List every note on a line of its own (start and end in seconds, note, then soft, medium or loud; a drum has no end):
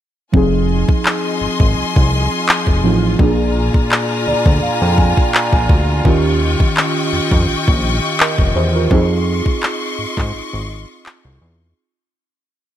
0.32 0.85 F1 medium
0.32 2.79 F3 medium
0.32 2.80 C4 medium
0.32 2.80 D#4 medium
0.32 11.73 F4 medium
0.32 2.81 G#4 medium
0.32 3.17 D#5 medium
0.32 3.17 G#5 medium
0.32 3.17 C6 medium
0.32 kick loud
0.89 kick medium
1.05 clap loud
1.41 1.49 G#1 soft
1.60 1.75 G#1 medium
1.60 kick medium
1.77 1.84 C2 soft
1.96 2.29 C2 medium
1.96 kick medium
2.49 clap loud
2.67 2.82 F1 medium
2.67 kick medium
2.83 3.16 A1 medium
2.83 3.19 F3 medium
2.83 3.20 C4 soft
2.83 3.20 D#4 soft
2.83 3.20 F4 medium
3.18 3.70 A#1 loud
3.18 6.01 A#2 medium
3.18 6.01 A#3 medium
3.18 6.02 D4 medium
3.18 6.03 G#4 medium
3.18 6.02 D5 medium
3.18 6.02 G#5 medium
3.18 6.02 A#5 medium
3.18 kick loud
3.74 kick medium
3.92 clap loud
4.27 4.34 D2 soft
4.27 4.60 D5 medium
4.46 4.61 D2 medium
4.46 kick medium
4.62 4.70 F2 soft
4.62 4.80 F5 medium
4.82 5.14 F2 medium
4.82 4.97 G5 medium
4.98 5.31 G#5 medium
4.98 kick medium
5.17 kick medium
5.34 5.52 A#5 medium
5.34 clap loud
5.53 5.68 A#1 medium
5.53 5.69 G#5 medium
5.53 kick medium
5.69 6.02 D2 medium
5.69 6.03 A#5 medium
5.69 kick medium
6.04 6.56 D#2 loud
6.04 8.86 D#3 medium
6.04 8.87 C#4 medium
6.04 8.16 F4 medium
6.04 8.17 G4 medium
6.04 8.88 D#5 medium
6.04 8.88 G5 medium
6.04 8.88 C#6 medium
6.04 kick loud
6.60 kick medium
6.77 clap loud
7.13 7.20 F2 soft
7.31 7.47 F2 medium
7.31 kick loud
7.49 7.56 A#1 soft
7.68 8.00 A#1 medium
7.68 kick loud
8.20 8.54 A#4 medium
8.20 8.54 D#5 medium
8.20 clap loud
8.38 8.54 F1 medium
8.38 kick medium
8.56 8.88 E2 medium
8.56 8.74 G4 medium
8.56 8.74 C5 medium
8.75 8.89 F4 medium
8.75 9.09 A#4 medium
8.90 9.42 F2 loud
8.90 11.73 C4 medium
8.90 11.73 D#4 medium
8.90 11.72 F4 medium
8.90 11.74 G#4 medium
8.90 11.74 D#5 medium
8.90 11.74 C6 medium
8.90 11.74 C#6 medium
8.90 kick loud
9.46 kick medium
9.63 clap loud
9.99 10.06 G#2 soft
10.17 10.32 G#2 medium
10.17 kick medium
10.17 clap medium
10.34 10.42 G#1 soft
10.53 10.86 G#1 medium
11.06 clap loud
11.25 11.40 C2 medium
11.41 11.74 E2 medium